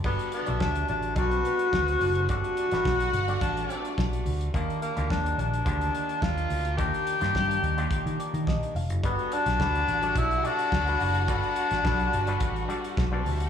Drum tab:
CC |x---------------|----------------|----------------|----------------|
HH |-xxx-xxxxxxx-xox|xxxx-xxxxxxx-xox|xxxx-xxxxxxx-xox|xxxx-xxxxxxx-xox|
SD |----o-------o---|---oo-------o---|----o-------o---|---oo-------o---|
BD |o---o---o---o---|o---o---o---o---|o---o---o---o---|o---o---o---o---|

CC |----------------|----------------|
HH |xxxx-xxxxxxx-xox|xxxx-xxxxxxx--ox|
SD |---oo-------o---|---oo-------o---|
BD |o---o---o---o---|o---o---o---o---|